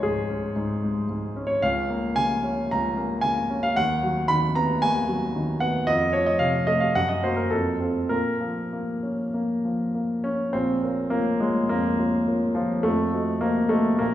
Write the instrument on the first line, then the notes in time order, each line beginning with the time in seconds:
grand piano
Already playing: C#2 G#3 C#5
0.03 G#2 G#4
0.29 C#4
0.56 G#2
0.84 G#3
1.09 G#2
1.36 C#4
1.47 C#5
1.62 C#2 F5
1.90 A#3
2.16 C#3 G#5
2.44 C#4
2.71 C#2 A#5
2.97 A#3
3.21 C#3 G#5
3.50 C#4
3.63 F5
3.76 D#2 F#5
4.03 F#3
4.28 D#3 B5
4.55 B3 A#5
4.82 D#2 G#5
5.08 F#3
5.35 D#3
5.60 B3 F#5
5.87 F2 D#5
6.13 F3 C#5
6.26 D#5
6.39 C3 F5
6.67 A3 D#5
6.80 F5
6.95 F#2 F#5
7.09 D#5
7.24 A#3 F#4 C5
7.36 A#4
7.50 F2 A4
7.80 C4 F4
8.09 A#2 A#4
8.40 F3
8.73 A#3
9.03 C#4
9.34 A#3
9.65 F3
9.95 A#3
10.24 C#4
10.53 A#1 C4
10.82 F4 A#4 C#5
11.10 A#3 F4 A#4 C#5
11.40 G#3 F4 A#4 C#5
11.69 F2 A#3
11.99 F4 A#4 C#5
12.28 F4 A#4 C#5
12.55 F3 F4 A#4 C#5
12.83 F2 A3
13.14 F#4 C5 D#5
13.41 A#3 F#4 C5 D#5
13.69 A3 F#4 C5 D#5
13.99 A#1 A#3